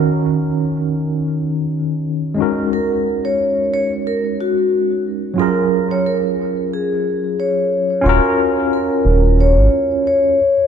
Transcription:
X:1
M:4/4
L:1/16
Q:"Swing 16ths" 1/4=90
K:Ebm
V:1 name="Vibraphone"
z16 | B3 d3 d2 B2 G4 z2 | B3 d B4 A4 d4 | B4 B4 d4 d4 |]
V:2 name="Tine electric piano"
[E,DEGB]12- [E,DEGB]2 [A,DEGB]2- | [A,DEGB]16 | [G,DFAB]16 | [DFGB]8- [DFGB]2 z6 |]
V:3 name="Analog synth bass" clef=bass
z16 | z16 | z16 | E,,, z4 z E,,,3 A,,, z6 |]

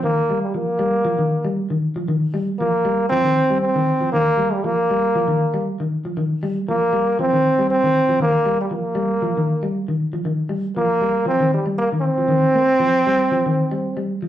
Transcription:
X:1
M:4/4
L:1/16
Q:"Swing 16ths" 1/4=118
K:Cm
V:1 name="Trombone"
B,3 G, B,8 z4 | z4 B,4 C4 C4 | B,3 G, B,8 z4 | z4 B,4 C4 C4 |
B,3 G, B,8 z4 | z4 B,4 C2 G,2 B,2 C2- | C12- C2 z2 |]
V:2 name="Clean electric guitar" clef=bass
E,2 G,2 F,2 G,2 F, E,2 G,2 E,2 F, | E,2 G,2 F,2 G,2 F, E,2 G,2 E,2 F, | E,2 G,2 F,2 G,2 F, E,2 G,2 E,2 F, | E,2 G,2 F,2 G,2 F, E,2 G,2 E,2 F, |
E,2 G,2 F,2 G,2 F, E,2 G,2 E,2 F, | E,2 G,2 F,2 G,2 F, E,2 G,2 E,2 F, | E,2 B,2 F,2 G,2 F, E,2 G,2 G,2 F, |]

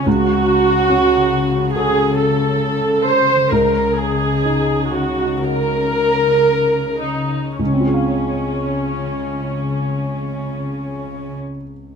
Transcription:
X:1
M:4/4
L:1/16
Q:1/4=60
K:Db
V:1 name="Viola section"
G8 A2 =A4 c2 | B2 A4 G2 B6 E2 | D16 |]
V:2 name="Grand piano"
D,,4 D4 [G=A]8 | D,,4 E4 [GB]8 | [D,,D,CFAf]16 |]
V:3 name="Cello section" clef=bass
D,16 | D,12- D,3 z | D,16 |]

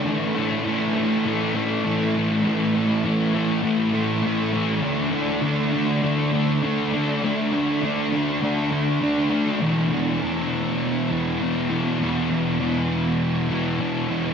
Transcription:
X:1
M:4/4
L:1/8
Q:1/4=100
K:Emix
V:1 name="Distorted electric guitar" clef=bass
[A,,E,A,] [E,A,] [A,,E,A,] [E,A,] [A,,E,A,] [E,A,] [A,,E,A,] [E,A,] | [A,,E,A,] [E,A,] [A,,E,A,] [E,A,] [A,,E,A,] [E,A,] [A,,E,A,] [E,A,] | [D,A,D] [A,D] [D,A,D] [A,D] [D,A,D] [A,D] [D,A,D] [A,D] | [D,A,D] [A,D] [D,A,D] [A,D] [D,A,D] [A,D] [D,A,D] [A,D] |
[E,,B,,E,] [B,,E,] [E,,B,,E,]3 [B,,E,] [E,,B,,E,] [B,,E,] | [E,,B,,E,] [B,,E,] [E,,B,,E,]3 [B,,E,] [E,,B,,E,] [B,,E,] |]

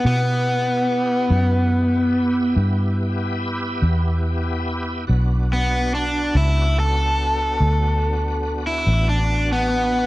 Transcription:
X:1
M:12/8
L:1/16
Q:3/8=48
K:Bm
V:1 name="Tonewheel organ"
[B,EG]24 | [B,DF]24 |]
V:2 name="Overdriven electric guitar"
B,12 z12 | z2 B,2 D2 E2 A8- A E2 D2 B,3 |]
V:3 name="Fingered electric bass" clef=bass
B,,6 F,,6 G,,6 E,,6 | B,,,6 C,,6 D,,6 A,,,6 |]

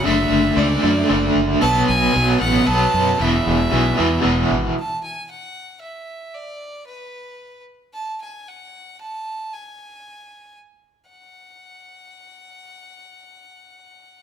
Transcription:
X:1
M:3/4
L:1/8
Q:1/4=114
K:Emix
V:1 name="Violin"
e2 d3 z | a g2 f a2 | e4- e z | a g f2 e2 |
d2 B3 z | a g f2 a2 | g4 z2 | f6- |
f6 |]
V:2 name="Overdriven electric guitar" clef=bass
[D,A,D]2 [D,A,D] [D,A,D] [D,A,D]2 | [B,,F,B,]2 [B,,F,B,] [B,,F,B,] [B,,F,B,]2 | [E,,B,,E,]2 [E,,B,,E,] [E,,B,,E,] [E,,B,,E,]2 | z6 |
z6 | z6 | z6 | z6 |
z6 |]
V:3 name="Fingered electric bass" clef=bass
F,,, F,,, C,, F,, F,,, F,,, | B,,, B,,, B,,, A,,, B,,, F,, | E,,, E,,, B,,, E,, E,,, G,,, | z6 |
z6 | z6 | z6 | z6 |
z6 |]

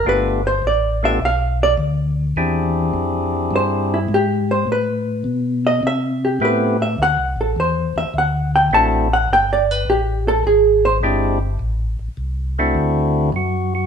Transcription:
X:1
M:4/4
L:1/8
Q:"Swing" 1/4=104
K:Ephr
V:1 name="Hollow-body jazz guitar"
B c d e f d z2 | z4 ^B E G B | B3 _e =e G B e | ^f A c e f g a f |
(3g d B G A ^G ^B z2 | z8 |]
V:2 name="Tonewheel organ"
[A,B,DFG] z2 [A,B,DFG] z4 | [^B,DEG^G]4- [B,DE=G^G] z3 | z6 [A,B,CEG] z | z6 [A,CDE^F] z |
z6 [^G,^B,DE=G] z | z3 [A,CDE^F]3 F F |]
V:3 name="Tonewheel organ" clef=bass
G,,,2 A,,,2 B,,,2 D,,2 | E,,2 F,,2 G,,2 ^G,,2 | A,,2 B,,2 C,2 A,,2 | (3D,, C,, A,,, E,, E,, D,,2 A,,,2 |
G,,,2 A,,,2 ^G,,,2 =G,,,2 | A,,, A,,, C,,2 D,,2 ^F,,2 |]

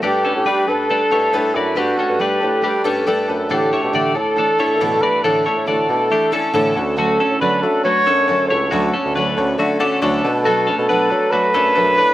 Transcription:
X:1
M:4/4
L:1/16
Q:1/4=138
K:Glyd
V:1 name="Trumpet"
G3 G3 A8 E2 | F4 G8- G2 z2 | G3 G3 A8 B2 | A4 A8- A2 z2 |
A4 B2 A2 c6 c2- | c2 z12 z2 | A3 A4- A B8 |]
V:2 name="Clean electric guitar"
[DG]2 [CA]2 [DB]4 [DA]2 [Ec]4 [Fd]2 | [DG]2 [CA]2 [DB]4 [DG]2 [CA]2 [DA]4 | [DA]2 [Ec]2 [Ad]4 [DA]2 [Ec]4 [Fd]2 | [DA]2 [Ec]2 [Ad]4 [DG]2 [CA]2 [CA]4 |
[A,F]2 [CA]2 [DB]4 [A,F]2 [CA]4 [Ec]2 | [A,F]2 [CA]2 [DB]4 [A,F]2 [CA]2 [DA]4 | [A,F]2 [CA]2 [DB]4 [A,F]2 [CA]4 [DB]2 |]
V:3 name="Upright piano"
[DGA]2 [DGB]2 [DGA]2 [DGB]2 [DGB]2 [DGA]2 [DGB]2 [DGA]2 | [DGB]2 [DGA]2 [DGA]2 [DGB]2 [DGB]2 [DGA]2 [DGA]2 [DGB]2 | [DEA]2 [DEA]2 [DEA]2 [DEA]2 [DEA]2 [DEA]2 [DEA]2 [DEA]2 | [DEA]2 [DEA]2 [DEF]2 [DEA]2 [DEA]2 [DEA]2 [DEA]2 [DFc]2- |
[DFc]2 [DFc]2 [DFc]2 [DFe]2 [DFB]2 [DFc]2 [DFc]2 [DFA]2 | [DFc]2 [DFc]2 [DFc]2 [DFc]2 [DFe]2 [DFd]2 [DFc]2 [DAB]2- | [DAB]2 [DAB]2 [DAB]2 [DAB]2 [DAd]2 [DAB]2 [DAB]2 [DAB]2 |]
V:4 name="Steel-string acoustic guitar"
[G,A,DA]2 [A,DA]2 [G,A,DA]2 [A,DA]2 [G,A,DA]2 [A,DA]2 [G,A,DA]2 [A,DA]2 | [G,A,DA]2 [A,DA]2 [G,A,DA]2 [A,DA]2 [G,A,DA]2 [A,DA]2 [G,A,DA]2 [A,DA]2 | [A,,D,E,A,DA]2 [E,A,DA]2 [A,,D,E,A,DA]2 [E,A,DA]2 [E,A,DA]2 [E,A,DA]2 [A,,D,E,A,DA]2 [E,A,DA]2 | [A,,D,E,A,DA]2 [E,A,DA]2 [A,,D,E,A,DA]2 [E,A,DA]2 [E,A,DA]2 [E,A,DA]2 [A,,D,E,A,DA]2 [A,CA]2 |
[D,F,A,CA]2 [A,CA]2 [D,F,A,CA]2 [A,CA]2 [F,A,CA]2 [A,CA]2 [D,F,A,CA]2 [A,CA]2 | [D,F,A,CA]2 [A,CA]2 [D,F,A,CA]2 [A,CA]2 [F,A,CA]2 [A,CA]2 [D,F,A,CA]2 [A,DA]2 | [B,,F,A,DA]2 [A,DA]2 [B,,F,A,DA]2 [A,DA]2 [F,A,DA]2 [A,DA]2 [B,,F,A,DA]2 [A,DA]2 |]
V:5 name="Bassoon" clef=bass
G,,3 A,, G,2 G,,4 G,,2 A,,2 F,,2 | G,,2 z G,,3 A,,2 G,2 G,,2 G,,2 F,,2 | A,,3 B,, A,2 A,,4 A,,2 B,,2 G,,2 | A,,2 z A,,3 B,,2 A,2 z2 A,,2 D,,2- |
D,,3 A,, D,2 F,4 F,,2 F,,2 C,,2 | D,,2 z D,,3 D,,2 D,2 D,2 D,,2 B,,2- | B,,3 B,, B,2 F,4 F,,2 F,,2 A,,2 |]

